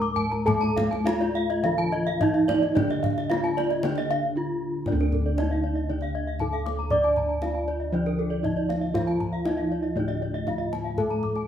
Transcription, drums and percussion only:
0.17 kendang low soft
0.32 kendang slap soft
0.48 kendang low medium
0.63 kendang slap soft
0.78 kendang high medium
0.78 kendang low medium
0.93 kendang slap soft
1.07 kendang high medium
1.23 kendang slap soft
1.50 kendang slap soft
1.79 kendang slap soft
2.21 kendang low medium
2.49 kendang high medium
2.49 kendang low soft
2.63 kendang slap soft
2.77 kendang high soft
2.77 kendang low medium
2.90 kendang slap soft
3.04 kendang low medium
3.18 kendang slap soft
3.31 kendang high medium
3.45 kendang slap soft
3.58 kendang high soft
3.70 kendang slap soft
3.83 kendang high medium
3.95 kendang slap soft
4.86 kendang high soft
4.86 kendang low soft
5.00 kendang slap soft
5.12 kendang low soft
5.38 kendang high soft
6.01 kendang slap soft
6.39 kendang low soft
6.66 kendang high soft
6.90 kendang low medium
7.04 kendang slap soft
7.16 kendang low soft
7.42 kendang high soft
8.06 kendang slap soft
8.45 kendang low soft
8.70 kendang high soft
8.95 kendang high soft
8.95 kendang low soft
9.08 kendang slap soft
9.21 kendang low soft
9.45 kendang high soft
10.08 kendang slap soft
10.47 kendang low soft
10.73 kendang high soft
10.98 kendang low soft
11.11 kendang slap soft
11.23 kendang low soft
11.36 kendang slap soft

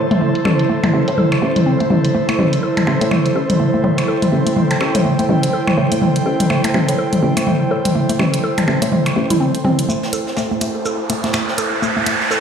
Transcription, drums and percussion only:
0.11 closed hi-hat soft
0.11 high tom soft
0.35 closed hi-hat soft
0.45 high tom soft
0.45 percussion blips medium
0.59 closed hi-hat soft
0.84 closed hi-hat soft
0.84 high tom soft
0.84 percussion blips medium
1.08 closed hi-hat soft
1.18 high tom soft
1.32 closed hi-hat soft
1.32 percussion blips medium
1.56 closed hi-hat soft
1.56 high tom soft
1.80 closed hi-hat soft
1.90 high tom soft
2.05 closed hi-hat soft
2.29 closed hi-hat soft
2.29 percussion blips medium
2.39 high tom soft
2.53 closed hi-hat soft
2.77 closed hi-hat soft
2.77 high tom soft
2.77 percussion blips medium
2.87 percussion blips medium
3.01 closed hi-hat soft
3.11 high tom soft
3.11 percussion blips medium
3.26 closed hi-hat soft
3.50 closed hi-hat soft
3.50 high tom soft
3.84 high tom soft
3.98 closed hi-hat soft
3.98 percussion blips medium
4.22 closed hi-hat soft
4.22 high tom soft
4.47 closed hi-hat soft
4.56 high tom soft
4.71 closed hi-hat soft
4.71 percussion blips medium
4.81 percussion blips medium
4.95 closed hi-hat medium
4.95 high tom soft
5.19 closed hi-hat soft
5.29 high tom soft
5.43 closed hi-hat soft
5.67 high tom soft
5.67 percussion blips medium
5.92 closed hi-hat soft
6.02 high tom soft
6.16 closed hi-hat soft
6.40 closed hi-hat soft
6.40 high tom soft
6.50 percussion blips medium
6.64 closed hi-hat soft
6.64 percussion blips medium
6.74 high tom soft
6.74 percussion blips medium
6.89 closed hi-hat medium
7.13 closed hi-hat soft
7.13 high tom soft
7.37 closed hi-hat medium
7.37 percussion blips medium
7.47 high tom soft
7.85 closed hi-hat soft
7.85 high tom soft
8.09 closed hi-hat soft
8.19 high tom soft
8.19 percussion blips medium
8.34 closed hi-hat soft
8.58 closed hi-hat soft
8.58 high tom soft
8.58 percussion blips medium
8.68 percussion blips medium
8.82 closed hi-hat medium
8.92 high tom soft
9.06 closed hi-hat soft
9.06 percussion blips medium
9.30 closed hi-hat medium
9.30 high tom soft
9.55 closed hi-hat soft
9.65 high tom soft
9.79 closed hi-hat medium
9.90 shaker medium
10.03 snare soft
10.13 closed hi-hat medium
10.13 shaker medium
10.27 snare soft
10.36 snare loud
10.36 shaker medium
10.51 closed hi-hat soft
10.61 closed hi-hat medium
10.61 shaker medium
10.85 shaker medium
11.10 closed hi-hat medium
11.10 shaker medium
11.24 snare medium
11.24 closed hi-hat soft
11.33 finger snap loud
11.33 snare loud
11.33 shaker medium
11.48 snare soft
11.58 closed hi-hat medium
11.58 shaker medium
11.83 shaker medium
12.06 closed hi-hat medium
12.06 shaker medium
12.21 snare medium
12.31 snare loud
12.31 shaker medium

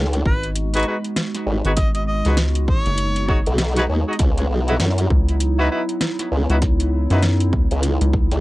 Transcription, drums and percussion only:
0.13 closed hi-hat medium
0.26 kick loud
0.43 closed hi-hat soft
0.56 closed hi-hat medium
0.74 closed hi-hat soft
0.77 closed hi-hat soft
0.80 closed hi-hat soft
0.83 closed hi-hat soft
1.04 closed hi-hat soft
1.16 snare loud
1.16 closed hi-hat medium
1.35 snare soft
1.35 closed hi-hat soft
1.65 closed hi-hat soft
1.77 kick loud
1.77 snare medium
1.77 closed hi-hat medium
1.95 closed hi-hat medium
2.25 snare soft
2.25 closed hi-hat soft
2.37 snare loud
2.37 closed hi-hat medium
2.55 closed hi-hat medium
2.68 kick loud
2.86 closed hi-hat soft
2.98 closed hi-hat medium
3.16 closed hi-hat medium
3.29 kick loud
3.46 closed hi-hat soft
3.58 snare loud
3.58 closed hi-hat medium
3.76 snare soft
3.76 closed hi-hat soft
4.13 closed hi-hat soft
4.19 kick loud
4.19 snare medium
4.19 closed hi-hat medium
4.38 closed hi-hat soft
4.68 closed hi-hat soft
4.80 snare loud
4.80 closed hi-hat medium
4.98 closed hi-hat medium
5.10 kick loud
5.29 closed hi-hat soft
5.40 closed hi-hat medium
5.89 closed hi-hat soft
6.01 snare loud
6.01 closed hi-hat medium
6.19 snare soft
6.19 closed hi-hat medium
6.50 closed hi-hat soft
6.62 kick loud
6.62 snare medium
6.62 closed hi-hat medium
6.80 closed hi-hat medium
7.10 snare soft
7.10 closed hi-hat soft
7.22 snare loud
7.22 closed hi-hat medium
7.40 closed hi-hat medium
7.53 kick loud
7.71 closed hi-hat soft
7.83 closed hi-hat medium
8.01 closed hi-hat soft
8.13 kick loud
8.31 snare soft
8.31 closed hi-hat soft

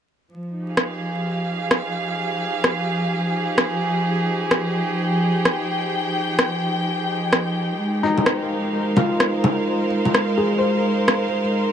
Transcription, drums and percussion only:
0.77 cross-stick loud
1.71 cross-stick medium
2.64 cross-stick medium
3.58 cross-stick loud
4.51 cross-stick loud
5.45 cross-stick medium
6.39 cross-stick loud
7.33 cross-stick medium
8.18 low bongo soft
8.26 cross-stick loud
8.97 low bongo medium
9.20 cross-stick loud
9.44 low bongo medium
10.05 low bongo soft
10.14 cross-stick medium
11.08 cross-stick medium

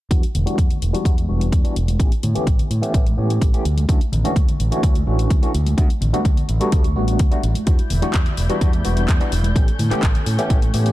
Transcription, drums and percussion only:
0.11 kick loud
0.11 closed hi-hat medium
0.23 closed hi-hat soft
0.35 closed hi-hat medium
0.35 tambourine medium
0.35 low conga medium
0.46 closed hi-hat soft
0.46 tambourine soft
0.46 high conga medium
0.58 kick loud
0.58 closed hi-hat medium
0.58 tambourine soft
0.70 closed hi-hat soft
0.70 low conga medium
0.82 closed hi-hat medium
0.82 tambourine medium
0.82 high conga medium
0.94 closed hi-hat soft
0.94 tambourine medium
1.05 kick loud
1.05 closed hi-hat medium
1.18 closed hi-hat soft
1.18 high conga medium
1.29 tambourine medium
1.41 closed hi-hat soft
1.41 tambourine soft
1.52 kick loud
1.52 closed hi-hat medium
1.52 tambourine soft
1.52 high conga medium
1.65 closed hi-hat soft
1.76 closed hi-hat medium
1.88 closed hi-hat soft
1.88 tambourine medium
1.88 high conga medium
2.00 kick loud
2.00 closed hi-hat medium
2.12 closed hi-hat soft
2.23 closed hi-hat medium
2.23 tambourine medium
2.23 low conga medium
2.35 closed hi-hat soft
2.35 tambourine soft
2.35 high conga medium
2.47 kick loud
2.47 closed hi-hat medium
2.47 tambourine soft
2.59 closed hi-hat soft
2.59 low conga medium
2.70 closed hi-hat medium
2.70 tambourine medium
2.83 closed hi-hat soft
2.94 kick loud
2.94 closed hi-hat medium
3.06 closed hi-hat soft
3.06 high conga medium
3.18 tambourine medium
3.30 closed hi-hat soft
3.41 kick loud
3.41 closed hi-hat medium
3.41 tambourine soft
3.41 high conga medium
3.54 closed hi-hat soft
3.65 closed hi-hat medium
3.77 closed hi-hat soft
3.77 tambourine medium
3.77 high conga loud
3.89 kick loud
3.89 closed hi-hat medium
4.01 closed hi-hat soft
4.12 closed hi-hat medium
4.12 tambourine medium
4.12 low conga medium
4.24 closed hi-hat soft
4.24 tambourine soft
4.24 high conga medium
4.36 kick loud
4.36 closed hi-hat medium
4.36 tambourine soft
4.48 closed hi-hat soft
4.48 low conga medium
4.59 closed hi-hat medium
4.59 tambourine medium
4.59 high conga medium
4.72 closed hi-hat soft
4.72 tambourine soft
4.83 kick loud
4.83 closed hi-hat medium
4.95 closed hi-hat soft
4.95 high conga loud
5.08 tambourine medium
5.18 closed hi-hat soft
5.18 tambourine soft
5.30 kick loud
5.30 closed hi-hat medium
5.30 tambourine soft
5.30 high conga medium
5.43 closed hi-hat soft
5.54 closed hi-hat medium
5.54 tambourine medium
5.67 closed hi-hat soft
5.67 tambourine soft
5.67 high conga medium
5.78 kick loud
5.78 closed hi-hat medium
5.90 closed hi-hat soft
6.01 closed hi-hat medium
6.01 tambourine medium
6.01 low conga medium
6.14 closed hi-hat soft
6.14 tambourine soft
6.14 high conga medium
6.25 kick loud
6.25 closed hi-hat medium
6.37 closed hi-hat soft
6.37 low conga medium
6.49 closed hi-hat medium
6.49 tambourine medium
6.61 closed hi-hat soft
6.61 tambourine soft
6.71 kick loud
6.71 closed hi-hat medium
6.71 tambourine soft
6.84 closed hi-hat soft
6.84 high conga medium
6.96 tambourine medium
7.08 closed hi-hat soft
7.08 tambourine soft
7.19 kick loud
7.19 closed hi-hat medium
7.19 tambourine soft
7.19 high conga medium
7.32 closed hi-hat soft
7.43 closed hi-hat medium
7.43 tambourine medium
7.55 closed hi-hat soft
7.55 tambourine soft
7.55 high conga medium
7.67 kick loud
7.67 closed hi-hat medium
7.79 closed hi-hat soft
7.90 open hi-hat loud
7.90 tambourine medium
7.90 low conga medium
8.02 closed hi-hat soft
8.02 tambourine soft
8.02 high conga medium
8.14 kick loud
8.14 clap loud
8.14 closed hi-hat medium
8.26 closed hi-hat soft
8.26 low conga medium
8.37 open hi-hat loud
8.37 tambourine medium
8.37 high conga medium
8.50 closed hi-hat soft
8.50 tambourine soft
8.61 kick loud
8.61 closed hi-hat medium
8.73 closed hi-hat soft
8.73 high conga medium
8.85 open hi-hat loud
8.85 tambourine medium
8.96 closed hi-hat soft
8.96 tambourine soft
9.08 kick loud
9.08 clap loud
9.08 closed hi-hat medium
9.08 tambourine soft
9.08 high conga medium
9.21 closed hi-hat soft
9.32 open hi-hat loud
9.32 tambourine medium
9.43 closed hi-hat soft
9.43 tambourine soft
9.43 high conga loud
9.56 kick loud
9.56 closed hi-hat medium
9.68 closed hi-hat soft
9.79 open hi-hat loud
9.79 tambourine medium
9.79 low conga medium
9.91 clap soft
9.91 closed hi-hat soft
9.91 tambourine medium
9.91 high conga medium
10.03 kick loud
10.03 clap loud
10.03 closed hi-hat medium
10.15 closed hi-hat soft
10.15 low conga medium
10.26 open hi-hat medium
10.26 tambourine medium
10.38 closed hi-hat soft
10.38 tambourine medium
10.50 kick loud
10.50 closed hi-hat medium
10.62 closed hi-hat soft
10.62 high conga medium
10.74 open hi-hat loud
10.74 tambourine medium
10.85 closed hi-hat soft
10.85 tambourine soft

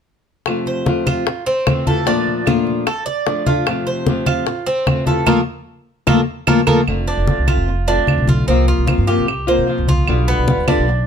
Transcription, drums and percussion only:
0.46 high bongo medium
0.46 high conga soft
0.46 claves medium
0.66 high conga soft
0.86 high bongo soft
0.86 high conga medium
1.07 high conga medium
1.07 claves medium
1.27 high bongo medium
1.27 high conga soft
1.47 high conga soft
1.67 high bongo medium
1.67 low bongo medium
1.67 high conga medium
1.67 claves medium
1.87 high conga medium
2.07 high bongo medium
2.07 high conga soft
2.27 high conga soft
2.47 high bongo medium
2.47 high conga medium
2.47 claves medium
2.67 high bongo soft
2.67 high conga soft
2.87 high bongo medium
2.87 high conga soft
2.87 claves medium
3.07 high bongo soft
3.07 high conga soft
3.27 high bongo medium
3.27 low bongo medium
3.27 high conga soft
3.47 high bongo soft
3.47 high conga medium
3.66 high bongo medium
3.66 high conga soft
3.66 claves medium
3.87 high conga soft
4.06 high bongo medium
4.06 high conga medium
4.26 high conga medium
4.26 claves medium
4.47 high bongo medium
4.47 high conga soft
4.67 high conga soft
4.87 high bongo medium
4.87 low bongo medium
4.87 high conga medium
4.87 claves medium
5.06 high conga medium
5.27 low bongo medium
5.27 high conga medium
5.27 claves medium
6.07 low bongo medium
6.07 high conga medium
6.07 claves medium
6.47 low bongo medium
6.47 high conga medium
6.47 claves medium
6.67 low bongo medium
6.67 high conga medium
6.67 claves medium
6.88 high conga soft
6.88 claves medium
7.08 high conga soft
7.27 high conga medium
7.48 high conga medium
7.48 claves medium
7.68 high conga soft
7.88 high conga soft
8.07 high conga medium
8.07 claves medium
8.28 high conga medium
8.47 high conga soft
8.67 high conga soft
8.87 high conga medium
8.87 claves medium
9.08 high conga soft
9.28 high conga soft
9.28 claves medium
9.48 high conga soft
9.68 high conga soft
9.88 high conga medium
10.07 high conga soft
10.07 claves medium
10.28 high conga soft
10.48 high conga medium
10.68 high conga medium
10.68 claves medium
10.88 high conga soft

